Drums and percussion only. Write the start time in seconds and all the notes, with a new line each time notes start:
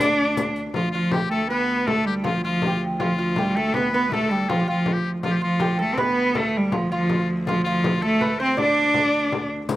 0.01 riq
0.37 riq, frame drum
0.56 riq
0.74 frame drum
0.94 frame drum
1.11 frame drum
1.31 frame drum
1.87 frame drum
2.24 frame drum
2.43 frame drum
2.62 frame drum
3.00 frame drum
3.19 frame drum
3.36 frame drum
3.56 frame drum
3.74 frame drum
4.12 frame drum
4.50 frame drum
4.68 frame drum
4.86 frame drum
5.05 frame drum
5.23 frame drum
5.42 frame drum
5.60 frame drum
5.98 frame drum
6.35 frame drum
6.54 frame drum
6.72 frame drum
6.91 frame drum
7.10 frame drum
7.47 frame drum
7.65 frame drum
7.84 frame drum
8.03 frame drum
8.21 frame drum
8.58 frame drum
8.94 frame drum
9.13 frame drum
9.32 frame drum
9.69 riq, frame drum